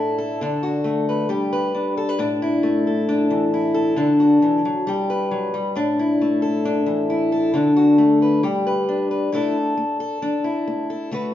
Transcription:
Already playing: steel-string acoustic guitar A2 A3 D4 E4 A4
0.18 steel-string acoustic guitar A4
0.41 steel-string acoustic guitar D3 D4
0.63 steel-string acoustic guitar F#4
0.84 steel-string acoustic guitar A3
1.09 steel-string acoustic guitar B4
1.29 steel-string acoustic guitar G3 G4
1.53 steel-string acoustic guitar B4
1.74 steel-string acoustic guitar D4
1.97 steel-string acoustic guitar A4
2.09 steel-string acoustic guitar B4
2.19 steel-string acoustic guitar A2 D4
2.42 steel-string acoustic guitar E4
2.63 steel-string acoustic guitar A3
2.87 steel-string acoustic guitar A4
3.09 steel-string acoustic guitar D4
3.30 steel-string acoustic guitar E3
3.54 steel-string acoustic guitar E4
3.74 steel-string acoustic guitar A4
3.96 steel-string acoustic guitar D3 D4
4.20 steel-string acoustic guitar F#4
4.42 steel-string acoustic guitar E3
4.65 steel-string acoustic guitar F#3
4.87 steel-string acoustic guitar G3 G4
5.10 steel-string acoustic guitar B4
5.31 steel-string acoustic guitar F#3
5.54 steel-string acoustic guitar G3
5.75 steel-string acoustic guitar A2 D4
5.99 steel-string acoustic guitar E4
6.21 steel-string acoustic guitar A3
6.42 steel-string acoustic guitar A4
6.65 steel-string acoustic guitar D4
6.86 steel-string acoustic guitar E3
7.10 steel-string acoustic guitar E4
7.32 steel-string acoustic guitar A4
7.54 steel-string acoustic guitar D3 D4
7.77 steel-string acoustic guitar F#4
7.98 steel-string acoustic guitar A3
8.22 steel-string acoustic guitar B4
8.43 steel-string acoustic guitar G3 G4
8.67 steel-string acoustic guitar B4
8.89 steel-string acoustic guitar D4
9.11 steel-string acoustic guitar B4
9.32 steel-string acoustic guitar A2 A3 D4 E4 A4
9.77 steel-string acoustic guitar A3
10.00 steel-string acoustic guitar A4
10.22 steel-string acoustic guitar E3 D4
10.44 steel-string acoustic guitar E4
10.68 steel-string acoustic guitar A3
10.90 steel-string acoustic guitar A4
11.11 steel-string acoustic guitar D3 A3 F#4 B4, muted steel-string acoustic guitar stroke

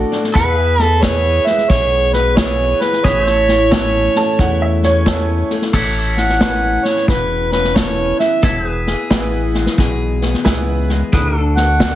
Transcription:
Already playing: steel-string acoustic guitar A2 D3 A3 D4 F#4, upright piano D4 F#4 A4 D5, pedal steel guitar D4 A4 F#5
0.12 steel-string acoustic guitar D4, snare
0.24 snare
0.34 steel-string acoustic guitar E2, analog synth bass E2, pedal steel guitar A4 B4 F#5, harmonica B4, kick, snare
0.54 pedal steel guitar G#4
0.61 pedal steel guitar E5
0.79 steel-string acoustic guitar G#4, harmonica A4, snare
1.02 steel-string acoustic guitar E3 B3, upright piano E4 G#4 B4, harmonica C#5, kick, snare, hi-hat pedal
1.46 steel-string acoustic guitar G#3, harmonica E5, snare
1.58 snare
1.69 analog synth bass B1, steel-string acoustic guitar B2 G#4, harmonica C#5, kick, snare
2.13 steel-string acoustic guitar B3, harmonica B4, snare
2.36 steel-string acoustic guitar E3, upright piano E4 G#4 B4, harmonica C#5, kick, snare, hi-hat pedal
2.81 steel-string acoustic guitar G#3, harmonica B4, snare
2.93 snare
3.04 analog synth bass A1, steel-string acoustic guitar A2, pedal steel guitar G#4 B4 E5, harmonica C#5, kick, snare
3.24 pedal steel guitar A4, snare
3.30 pedal steel guitar C#5
3.48 steel-string acoustic guitar E4, snare
3.71 steel-string acoustic guitar E3 C#4, upright piano E4 A4 C#5, kick, snare, hi-hat pedal
4.16 steel-string acoustic guitar A3, upright piano A5, snare
4.39 analog synth bass E2, steel-string acoustic guitar E2 E4, upright piano F#5, kick, snare
4.62 upright piano E5
4.83 steel-string acoustic guitar C#4, upright piano C#5, snare
5.06 steel-string acoustic guitar E3, upright piano E4 A4 C#5, kick, snare, hi-hat pedal
5.50 steel-string acoustic guitar A3, snare
5.62 snare
5.73 analog synth bass A1, steel-string acoustic guitar A2, pedal steel guitar A4 C#5 E5, kick, snare, crash
6.17 steel-string acoustic guitar E4, harmonica F#5, snare
6.29 snare
6.41 steel-string acoustic guitar E3 C#4, upright piano C#4 A4 B4, kick, snare, hi-hat pedal
6.85 steel-string acoustic guitar B3, harmonica C#5, snare
6.96 snare
7.08 analog synth bass E1, steel-string acoustic guitar E2 E4, harmonica B4, kick, snare
7.52 steel-string acoustic guitar C#4, harmonica B4, snare
7.64 snare
7.75 steel-string acoustic guitar E3, upright piano C#4 A4 B4, harmonica C#5, kick, snare, hi-hat pedal
8.20 steel-string acoustic guitar B3, harmonica E5, snare
8.43 analog synth bass E1, steel-string acoustic guitar E2, pedal steel guitar A4 C#5 E5, kick, snare
8.63 pedal steel guitar G#4
8.69 pedal steel guitar B4
8.87 steel-string acoustic guitar G#4, snare
9.11 analog synth bass A1, steel-string acoustic guitar E3 B3, upright piano E4 G#4 B4, kick, snare, hi-hat pedal
9.55 steel-string acoustic guitar G#3, snare
9.66 snare
9.78 analog synth bass B1, steel-string acoustic guitar B2 G#4, kick, snare
10.22 steel-string acoustic guitar B3, snare
10.34 snare
10.45 analog synth bass C#2, steel-string acoustic guitar E3, upright piano E4 G#4 B4, kick, snare, hi-hat pedal
10.89 steel-string acoustic guitar G#3, snare
11.13 analog synth bass D2, steel-string acoustic guitar D3, pedal steel guitar E4 G#4 B4, kick, snare
11.38 pedal steel guitar D4 F#4 A4
11.56 steel-string acoustic guitar F#4, harmonica F#5, snare
11.80 steel-string acoustic guitar A3 F#4, upright piano D4 F#4 A4, kick, snare, hi-hat pedal

